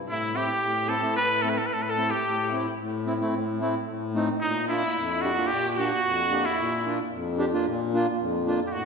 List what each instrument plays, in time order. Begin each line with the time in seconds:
0.07 accordion A2, violin E4, cornet E4
0.34 accordion A3 C4 E4, violin G4, cornet G4
0.61 accordion A2
0.75 violin G4
0.87 accordion C4 E4, violin A4, cornet A4
1.02 accordion A3 C4 E4
1.15 accordion A2, violin B4, cornet B4
1.42 accordion A3 C4 E4, cornet A4
1.49 cornet B4
1.58 cornet A4
1.66 cornet B4
1.71 accordion A2, cornet A4
1.83 cornet B4
1.89 violin A4, cornet A4
1.97 accordion A3 C4 E4
2.10 violin G4, cornet G4
2.26 accordion A2
2.50 accordion A3 C4 E4, violin E4
2.79 accordion A2
3.06 accordion C4 E4
3.20 accordion A3 C4 E4
3.34 accordion A2
3.60 accordion A3 C4 E4
3.88 accordion A2
4.14 accordion A3 C4 D#4
4.41 accordion A#2, cornet D#4, violin D#4
4.68 accordion A#3 D4 F4, violin E4, cornet E4
4.96 accordion F2
5.07 violin E4
5.22 accordion D4 G4, cornet F#4
5.36 accordion A#3 D4 F4
5.47 accordion A#2, cornet G4, violin G4
5.69 cornet G4
5.76 accordion A#3 D4 G4, violin F#4, cornet F#4
6.05 accordion F2
6.31 accordion A#3 D4 G4
6.43 violin E4, cornet E4
6.59 accordion A#2
6.85 accordion A#3 D4 F4
7.13 accordion F2
7.38 accordion D4 G4
7.52 accordion A#3 D4 F4
7.65 accordion A#2
7.93 accordion A#3 D4 F4
8.20 accordion F2
8.46 accordion A#3 D4 F4
8.67 cornet G4
8.72 accordion A2, cornet F#4, violin F#4